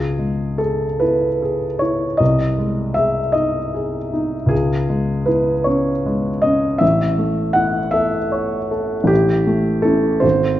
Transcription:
Already playing: C#2 G#4
0.18 G#3
0.58 G#4 A4
1.00 E4 B4
1.42 G#4
1.79 E4 C#5
2.17 C2 D#5
2.58 G#3
2.94 G#4 E5
3.32 D#4 D#5
3.74 G#4
4.13 D#4
4.46 C#2 G#4
4.89 G#3
5.26 E4 B4
5.64 C#4 C#5
6.06 G#3
6.42 C#4 D#5
6.78 A1 E5
7.18 A3
7.53 E4 F#5
7.91 A4 E5
8.32 C#5
8.71 A4
9.04 A1 G4
9.47 A3
9.82 C#4 E4 A4
10.20 G#1 C5

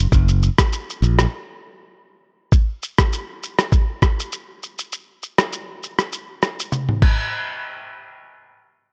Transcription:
0.12 F#1, kick, shaker
0.28 shaker
0.43 shaker
0.58 kick, cross-stick, shaker
0.73 shaker
0.90 shaker
1.02 A#1, shaker
1.19 cross-stick, shaker
2.52 kick, shaker
2.83 shaker
2.98 kick, cross-stick, shaker
3.13 shaker
3.43 shaker
3.59 cross-stick, shaker
3.72 kick, shaker
4.02 kick, cross-stick, shaker
4.20 shaker
4.32 shaker
4.63 shaker
4.78 shaker
4.92 shaker
5.23 shaker
5.38 cross-stick, shaker
5.53 shaker
5.83 shaker
5.99 cross-stick, shaker
6.12 shaker
6.42 cross-stick, shaker
6.59 shaker
6.72 high tom, shaker
6.89 mid tom
7.02 kick, crash

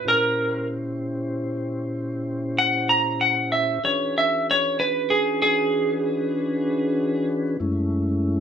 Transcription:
0.04 A#2 C#4 E4 G4 C5
0.08 A#4
2.58 F#5
2.89 A#5
3.21 F#5
3.52 E5
3.83 E3 C#4 D4 F#4 G#4 B4 C#5
4.18 E5
4.51 C#5
4.80 B4
5.10 G#4
5.42 G#4
7.60 F#2 G#3 A3 C#4 E4

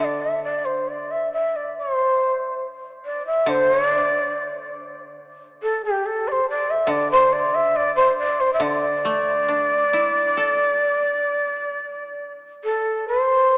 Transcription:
Already playing: D3
0.04 D5
0.21 E5
0.44 D5
0.65 C5
0.89 D5
1.11 E5
1.33 E5
1.56 D5
1.78 C5
3.05 D5
3.27 E5
3.46 D3 C5
3.72 C#5
3.87 D5
5.62 A4
5.85 G4
6.06 A4
6.28 C5 D5
6.49 D5
6.70 E5
6.87 D3 D5
7.12 C5
7.33 D5
7.55 E5
7.76 D5
7.96 C5
8.18 D5
8.40 C5
8.53 E5
8.60 D3 D5
9.05 A3
9.48 D4
9.93 E4
10.37 A4
12.64 A4
13.08 C5

